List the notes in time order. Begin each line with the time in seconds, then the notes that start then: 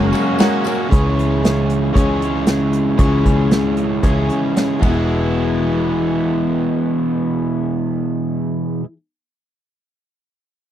Already playing: F#1 F#2 C#3 F#3 G#3 A#3 C#4 F#4 G#4 A#4 C#5 F#5
0.12 F#3 A#3 C#4 F#4 G#5, ride, tambourine
0.38 F#3 G#3 A#3 C#4 F#4 G#4 A#4 C#5 F#5, snare, ride, tambourine
0.64 G#3 A#3 C#4 F#4, ride, tambourine
0.88 C#2 C#3 E3 G#3 C#4 E4 G#4 C#5, kick, closed hi-hat
1.19 closed hi-hat
1.43 E3 C#4 G#4, snare, closed hi-hat
1.70 closed hi-hat
1.93 C#2 C#3 E3 G#3 C#4 E4 G#4 C#5, kick, closed hi-hat
2.22 closed hi-hat
2.46 E3 C#4 G#4, snare, closed hi-hat
2.73 closed hi-hat
2.97 C#2 C#3 E3 G#3 C#4 E4 G#4 C#5, kick, closed hi-hat
3.25 C#2, kick, closed hi-hat
3.51 E3 C#4 G#4, snare, closed hi-hat
3.77 closed hi-hat
4.03 C#2 C#3 E3 G#3 C#4 E4 G#4 C#5, kick, closed hi-hat
4.29 closed hi-hat
4.56 E3 C#4 G#4, snare, closed hi-hat
4.79 E1 E2 B2 E3 G#3 B3, kick, ride
4.84 B3 E4
4.90 E4 G#4